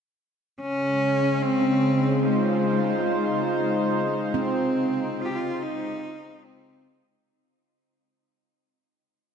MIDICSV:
0, 0, Header, 1, 5, 480
1, 0, Start_track
1, 0, Key_signature, -5, "major"
1, 0, Tempo, 833333
1, 336, Time_signature, 4, 2, 24, 8
1, 5384, End_track
2, 0, Start_track
2, 0, Title_t, "Analog synth pad"
2, 0, Program_c, 0, 89
2, 341, Note_on_c, 0, 49, 78
2, 497, Note_on_c, 0, 56, 75
2, 961, Note_on_c, 0, 72, 79
2, 1114, Note_on_c, 0, 63, 65
2, 1205, Note_on_c, 0, 65, 60
2, 2258, Note_off_c, 0, 49, 0
2, 3027, Note_off_c, 0, 65, 0
2, 4172, Note_off_c, 0, 56, 0
2, 4172, Note_off_c, 0, 63, 0
2, 4173, Note_off_c, 0, 72, 0
2, 5384, End_track
3, 0, Start_track
3, 0, Title_t, "Cello"
3, 0, Program_c, 1, 42
3, 354, Note_on_c, 1, 61, 86
3, 816, Note_on_c, 1, 60, 92
3, 825, Note_off_c, 1, 61, 0
3, 1297, Note_on_c, 1, 56, 70
3, 1306, Note_off_c, 1, 60, 0
3, 2017, Note_off_c, 1, 56, 0
3, 2503, Note_on_c, 1, 60, 77
3, 3004, Note_on_c, 1, 65, 82
3, 3013, Note_off_c, 1, 60, 0
3, 3023, Note_on_c, 1, 67, 75
3, 3032, Note_off_c, 1, 65, 0
3, 3069, Note_on_c, 1, 65, 85
3, 3078, Note_off_c, 1, 67, 0
3, 3242, Note_on_c, 1, 63, 84
3, 3250, Note_off_c, 1, 65, 0
3, 3712, Note_on_c, 1, 60, 72
3, 3721, Note_off_c, 1, 63, 0
3, 4064, Note_off_c, 1, 60, 0
3, 5384, End_track
4, 0, Start_track
4, 0, Title_t, "Handpan"
4, 0, Program_c, 2, 114
4, 2501, Note_on_c, 2, 60, 59
4, 3844, Note_off_c, 2, 60, 0
4, 5384, End_track
5, 0, Start_track
5, 0, Title_t, "Synth drone"
5, 0, Program_c, 3, 95
5, 341, Note_on_c, 3, 49, 68
5, 344, Note_on_c, 3, 65, 73
5, 4226, Note_off_c, 3, 49, 0
5, 4228, Note_off_c, 3, 65, 0
5, 5384, End_track
0, 0, End_of_file